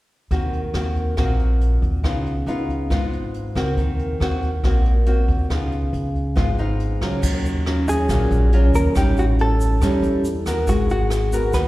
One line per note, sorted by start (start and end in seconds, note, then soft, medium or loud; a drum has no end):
0.31 0.71 D#2 medium
0.31 1.16 D#3 soft
0.31 0.59 A#3 soft
0.31 0.59 C4 soft
0.31 0.59 F#4 soft
0.31 kick soft
0.31 closed hi-hat soft
0.53 closed hi-hat soft
0.74 1.14 D#2 medium
0.74 1.14 A#3 soft
0.74 1.14 C4 soft
0.74 1.15 F#4 soft
0.74 cross-stick soft
0.74 closed hi-hat soft
0.95 kick soft
0.95 closed hi-hat soft
1.17 1.78 A#1 medium
1.17 2.02 A#2 soft
1.17 2.00 A#3 soft
1.17 2.01 C4 soft
1.17 2.01 F#4 medium
1.17 kick soft
1.17 cross-stick soft
1.17 closed hi-hat soft
1.39 closed hi-hat soft
1.61 closed hi-hat soft
1.82 2.03 D#2 medium
1.82 kick soft
1.82 closed hi-hat soft
2.03 2.44 C#2 medium
2.03 2.88 C#3 soft
2.03 2.32 B3 soft
2.03 2.32 D#4 soft
2.03 2.32 F4 soft
2.03 kick soft
2.03 cross-stick soft
2.03 closed hi-hat soft
2.26 closed hi-hat soft
2.46 2.87 C#2 medium
2.46 2.87 B3 soft
2.46 2.88 D#4 soft
2.46 2.88 F4 soft
2.46 closed hi-hat soft
2.69 kick soft
2.69 closed hi-hat soft
2.90 3.51 G#1 medium
2.90 3.75 G#2 medium
2.90 3.52 B3 soft
2.90 3.52 D#4 soft
2.90 3.52 F4 soft
2.90 kick soft
2.90 cross-stick soft
2.90 closed hi-hat soft
3.13 closed hi-hat soft
3.34 closed hi-hat soft
3.55 3.77 C#2 medium
3.55 4.17 A#3 soft
3.55 4.17 C4 medium
3.55 4.18 F#4 medium
3.55 kick soft
3.55 cross-stick medium
3.55 closed hi-hat soft
3.77 4.17 D#2 medium
3.77 4.61 D#3 soft
3.77 kick medium
3.77 closed hi-hat soft
3.99 closed hi-hat soft
4.20 4.60 D#2 medium
4.20 4.48 A#3 soft
4.20 4.49 C4 soft
4.20 4.49 F#4 medium
4.20 cross-stick soft
4.20 closed hi-hat soft
4.42 kick soft
4.42 closed hi-hat soft
4.63 5.24 A#1 medium
4.63 5.48 A#2 soft
4.63 4.92 A#3 medium
4.63 4.92 C4 soft
4.63 4.92 F#4 medium
4.63 kick soft
4.63 cross-stick soft
4.63 closed hi-hat soft
4.85 closed hi-hat soft
5.06 5.46 A#3 soft
5.06 5.46 C4 soft
5.06 5.47 F#4 medium
5.06 closed hi-hat soft
5.28 5.50 D#2 medium
5.28 kick soft
5.28 closed hi-hat soft
5.50 5.90 C#2 medium
5.50 6.34 C#3 soft
5.50 6.08 B3 soft
5.50 6.08 D#4 soft
5.50 6.08 F4 medium
5.50 kick medium
5.50 cross-stick soft
5.50 closed hi-hat soft
5.72 closed hi-hat soft
5.93 6.33 C#2 medium
5.93 closed hi-hat soft
6.15 kick soft
6.15 closed hi-hat soft
6.36 6.97 G#1 medium
6.36 7.20 G#2 soft
6.36 6.49 B3 soft
6.36 6.49 D#4 soft
6.36 6.49 F4 medium
6.36 kick medium
6.36 cross-stick medium
6.36 closed hi-hat soft
6.58 6.98 B3 soft
6.58 6.98 D#4 soft
6.58 6.99 F4 medium
6.58 closed hi-hat soft
6.80 closed hi-hat soft
7.01 7.21 C#2 medium
7.01 7.63 F#3 soft
7.01 7.63 C#4 soft
7.01 7.63 F4 medium
7.01 kick soft
7.01 cross-stick soft
7.01 closed hi-hat soft
7.22 8.05 D#2 medium
7.22 8.06 D#3 soft
7.22 kick medium
7.22 crash medium
7.22 shaker medium
7.45 closed hi-hat soft
7.45 shaker soft
7.66 8.06 F#3 soft
7.66 8.06 C#4 soft
7.66 8.07 F4 medium
7.66 cross-stick medium
7.66 closed hi-hat soft
7.87 8.75 G#4 medium
7.87 kick soft
7.87 closed hi-hat soft
7.87 shaker medium
8.09 8.29 A#1 medium
8.09 8.93 A#2 medium
8.09 8.49 F#3 medium
8.09 8.49 C#4 soft
8.09 8.49 F4 medium
8.09 kick soft
8.09 cross-stick soft
8.09 closed hi-hat soft
8.09 shaker medium
8.31 8.74 A#1 medium
8.31 closed hi-hat soft
8.31 shaker soft
8.52 8.92 F#3 medium
8.52 8.93 C#4 soft
8.52 8.93 F4 medium
8.52 closed hi-hat soft
8.74 8.94 D#2 medium
8.74 8.97 A#4 medium
8.74 kick soft
8.74 closed hi-hat soft
8.74 shaker medium
8.95 9.77 A1 medium
8.95 9.80 A2 soft
8.95 9.79 G3 soft
8.95 9.79 C#4 soft
8.95 9.79 D#4 medium
8.95 9.18 G4 medium
8.95 kick medium
8.95 cross-stick medium
8.95 closed hi-hat soft
8.95 shaker medium
9.17 9.25 F#4 medium
9.17 closed hi-hat soft
9.17 shaker soft
9.39 10.44 A4 medium
9.39 closed hi-hat soft
9.60 kick soft
9.60 closed hi-hat soft
9.60 shaker medium
9.81 10.01 E2 medium
9.81 10.66 E3 medium
9.81 10.25 G3 medium
9.81 10.25 C#4 medium
9.81 10.25 D#4 medium
9.81 kick soft
9.81 cross-stick medium
9.81 closed hi-hat soft
9.81 shaker medium
10.03 10.46 E2 medium
10.03 closed hi-hat soft
10.03 shaker soft
10.24 closed hi-hat soft
10.24 shaker medium
10.46 10.66 D#2 medium
10.46 11.08 B3 medium
10.46 11.08 F#4 soft
10.46 11.08 A#4 medium
10.46 kick soft
10.46 cross-stick medium
10.46 closed hi-hat soft
10.46 shaker medium
10.67 11.50 G#1 medium
10.67 11.52 G#3 soft
10.67 10.89 F#4 medium
10.67 kick medium
10.67 closed hi-hat soft
10.67 shaker medium
10.89 11.54 F#4 medium
10.89 closed hi-hat soft
10.89 shaker soft
11.10 cross-stick medium
11.10 closed hi-hat soft
11.10 shaker soft
11.32 11.68 B3 medium
11.32 11.68 F#4 medium
11.32 11.68 A#4 medium
11.32 kick soft
11.32 closed hi-hat soft
11.32 shaker medium
11.53 11.68 D#2 medium
11.53 11.68 D#3 medium
11.53 11.68 B4 medium
11.53 kick soft
11.53 cross-stick medium
11.53 closed hi-hat soft
11.53 shaker medium